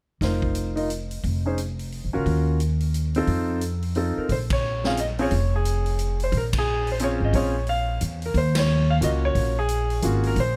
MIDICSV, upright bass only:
0, 0, Header, 1, 3, 480
1, 0, Start_track
1, 0, Key_signature, -5, "minor"
1, 0, Tempo, 340522
1, 296, Time_signature, 3, 2, 24, 8
1, 6535, Tempo, 337079
1, 14975, End_track
2, 0, Start_track
2, 0, Title_t, "Upright bass"
2, 0, Program_c, 0, 32
2, 296, Note_on_c, 0, 29, 72
2, 1684, Note_off_c, 0, 29, 0
2, 1750, Note_on_c, 0, 29, 75
2, 2811, Note_off_c, 0, 29, 0
2, 2883, Note_on_c, 0, 34, 52
2, 3023, Note_off_c, 0, 34, 0
2, 3036, Note_on_c, 0, 37, 61
2, 3179, Note_off_c, 0, 37, 0
2, 3189, Note_on_c, 0, 39, 73
2, 4569, Note_off_c, 0, 39, 0
2, 4610, Note_on_c, 0, 41, 76
2, 5815, Note_off_c, 0, 41, 0
2, 6048, Note_on_c, 0, 34, 83
2, 7437, Note_off_c, 0, 34, 0
2, 7504, Note_on_c, 0, 29, 80
2, 8887, Note_off_c, 0, 29, 0
2, 8934, Note_on_c, 0, 34, 89
2, 10140, Note_off_c, 0, 34, 0
2, 10191, Note_on_c, 0, 32, 63
2, 10364, Note_off_c, 0, 32, 0
2, 10380, Note_on_c, 0, 34, 83
2, 11284, Note_off_c, 0, 34, 0
2, 11343, Note_on_c, 0, 40, 77
2, 11789, Note_off_c, 0, 40, 0
2, 11813, Note_on_c, 0, 39, 87
2, 12720, Note_off_c, 0, 39, 0
2, 12771, Note_on_c, 0, 37, 79
2, 13221, Note_off_c, 0, 37, 0
2, 13249, Note_on_c, 0, 34, 81
2, 14157, Note_off_c, 0, 34, 0
2, 14209, Note_on_c, 0, 32, 72
2, 14659, Note_off_c, 0, 32, 0
2, 14685, Note_on_c, 0, 34, 89
2, 14975, Note_off_c, 0, 34, 0
2, 14975, End_track
3, 0, Start_track
3, 0, Title_t, "Muted upright bass strokes"
3, 5882, Note_on_c, 9, 29, 31
3, 6023, Note_off_c, 9, 29, 0
3, 14975, End_track
0, 0, End_of_file